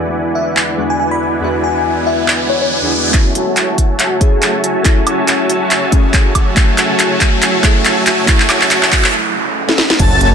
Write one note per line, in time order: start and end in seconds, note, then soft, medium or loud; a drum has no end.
0.00 0.75 E2 medium
0.00 3.10 D3 medium
0.00 0.75 G#3 medium
0.00 3.10 G#3 medium
0.00 0.76 B3 medium
0.00 3.10 B3 medium
0.00 0.76 D4 medium
0.00 3.10 E4 medium
0.00 3.12 E4 medium
0.00 0.77 F#4 loud
0.00 3.12 B4 medium
0.00 3.12 D5 medium
0.00 3.12 F#5 medium
0.00 3.12 G#5 medium
0.00 riser medium
0.35 0.53 E5 medium
0.57 clap medium
0.77 0.90 E2 medium
0.77 0.90 G#3 medium
0.77 0.90 B3 medium
0.77 0.90 D4 medium
0.77 0.91 F#4 medium
0.90 0.96 G#5 medium
0.99 1.07 G#5 medium
1.11 1.28 B5 medium
1.40 2.46 E2 medium
1.40 2.47 G#3 medium
1.40 2.47 B3 medium
1.40 2.48 D4 medium
1.44 2.48 F#4 loud
1.64 2.05 G#5 medium
2.07 2.25 E5 medium
2.28 clap medium
2.49 2.57 C#5 medium
2.61 2.67 C#5 medium
2.82 3.11 E2 medium
2.82 3.11 G#3 medium
2.82 3.12 B3 medium
2.82 3.12 D4 medium
2.82 3.12 G#4 medium
3.12 9.10 C#3 medium
3.12 9.10 F#3 medium
3.12 4.18 A3 medium
3.12 9.10 A3 medium
3.12 4.18 C#4 medium
3.12 9.10 E4 medium
3.12 4.19 E4 medium
3.12 kick loud
3.12 clap soft
3.12 closed hi-hat medium
3.12 riser medium
3.35 4.62 F#4 medium
3.35 4.62 C#5 medium
3.35 4.62 E5 medium
3.35 4.62 G#5 medium
3.35 4.62 A5 medium
3.35 closed hi-hat medium
3.57 clap soft
3.57 closed hi-hat medium
3.78 kick medium
3.78 closed hi-hat medium
3.99 clap medium
3.99 closed hi-hat medium
4.20 4.32 A3 medium
4.20 4.33 C#4 medium
4.20 4.33 E4 medium
4.20 4.33 G#4 medium
4.20 kick medium
4.20 closed hi-hat medium
4.42 clap medium
4.42 closed hi-hat medium
4.64 4.83 F#4 medium
4.64 4.83 C#5 medium
4.64 4.83 E5 medium
4.64 4.83 G#5 medium
4.64 4.83 A5 medium
4.64 closed hi-hat medium
4.83 5.89 A3 medium
4.83 5.90 C#4 medium
4.83 5.90 E4 medium
4.83 5.04 F#4 medium
4.83 5.04 C#5 medium
4.83 5.04 G#5 medium
4.83 5.04 A5 loud
4.83 kick loud
4.83 clap medium
4.83 closed hi-hat medium
5.07 6.33 F#4 medium
5.07 6.33 C#5 medium
5.07 6.33 E5 medium
5.07 6.33 G#5 medium
5.07 6.33 A5 medium
5.07 closed hi-hat medium
5.07 high woodblock medium
5.28 clap medium
5.28 closed hi-hat medium
5.50 closed hi-hat medium
5.71 clap medium
5.71 closed hi-hat medium
5.91 6.04 A3 medium
5.91 6.04 C#4 medium
5.91 6.04 E4 medium
5.91 6.05 G#4 medium
5.91 kick loud
5.91 closed hi-hat medium
6.14 kick loud
6.14 clap medium
6.14 closed hi-hat medium
6.35 6.54 F#4 medium
6.35 6.54 C#5 medium
6.35 6.54 E5 medium
6.35 6.54 G#5 medium
6.35 6.54 A5 medium
6.35 kick medium
6.35 closed hi-hat medium
6.35 high woodblock medium
6.55 7.60 A3 medium
6.55 7.61 C#4 medium
6.55 7.62 E4 medium
6.55 6.76 F#4 medium
6.55 6.76 C#5 medium
6.55 6.76 G#5 medium
6.55 6.76 A5 loud
6.55 kick loud
6.55 clap medium
6.55 closed hi-hat medium
6.78 8.04 F#4 medium
6.78 8.04 C#5 medium
6.78 8.04 E5 medium
6.78 8.04 G#5 medium
6.78 8.04 A5 medium
6.78 clap medium
6.78 closed hi-hat medium
6.99 clap medium
6.99 closed hi-hat medium
7.21 kick medium
7.21 clap medium
7.21 closed hi-hat medium
7.42 clap medium
7.42 closed hi-hat medium
7.63 7.75 A3 medium
7.63 7.76 C#4 medium
7.63 7.76 E4 medium
7.63 7.76 G#4 medium
7.63 kick loud
7.63 clap medium
7.63 closed hi-hat medium
7.85 clap medium
7.85 closed hi-hat medium
8.07 8.26 F#4 medium
8.07 8.26 C#5 medium
8.07 8.26 E5 medium
8.07 8.26 G#5 medium
8.07 8.26 A5 medium
8.07 clap medium
8.07 closed hi-hat medium
8.26 9.32 A3 loud
8.26 9.33 C#4 medium
8.26 9.33 E4 medium
8.26 kick loud
8.26 clap medium
8.26 closed hi-hat medium
8.26 noise sweep medium
8.40 clap medium
8.49 9.14 F#4 medium
8.49 9.14 C#5 medium
8.49 9.14 E5 medium
8.49 9.14 G#5 medium
8.49 9.14 A5 medium
8.49 clap loud
8.49 closed hi-hat medium
8.49 high woodblock medium
8.61 clap medium
8.71 clap loud
8.71 closed hi-hat medium
8.83 clap medium
8.92 kick medium
8.92 clap loud
8.92 closed hi-hat medium
9.04 clap medium
9.68 9.97 A3 medium
9.68 9.97 C#4 medium
9.68 9.97 E4 medium
9.68 9.98 A4 medium
9.68 snare medium
9.78 snare medium
9.90 snare medium
9.99 10.19 F#1 loud
9.99 10.19 F#4 medium
9.99 10.19 C#5 medium
9.99 10.19 E5 medium
9.99 10.19 G#5 medium
9.99 10.19 A5 loud
9.99 kick loud
9.99 closed hi-hat medium
9.99 crash loud
9.99 sub drop medium
10.21 10.35 F#1 loud
10.21 10.35 F#4 medium
10.21 10.35 C#5 medium
10.21 10.35 E5 medium
10.21 10.35 G#5 medium
10.21 10.35 A5 medium
10.21 closed hi-hat medium